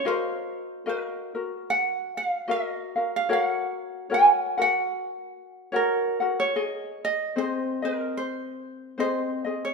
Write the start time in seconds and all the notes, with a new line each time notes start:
0.05 F#4 A#4 C5 D#5 F5
0.86 F#4 A#4 D#5 F5
1.35 F#4 A#4
1.70 F#5
2.17 F5
2.48 F#4 A#4 D#5 E5 F5
2.68 D#5
2.96 F#4 A#4 F5
3.16 F5
3.29 F#4 A#4 C#5 F#5
3.33 F5
3.44 F#5
4.10 F#4 A#4 C#5 F#5
4.14 G#5
4.58 F#4 A#4 F#5
4.62 F#5
5.72 F#4 A#4 C#5 F#5
6.20 F#4 A#4 F#5
6.40 C#5
6.56 G#4 D#5
7.05 D#5
7.36 C4 G#4 C5 D#5
7.82 C4 G#4 A#4 D#5
8.17 C5
8.98 C4 G#4 C5 D#5
9.45 C4 G#4 D#5
9.65 C#5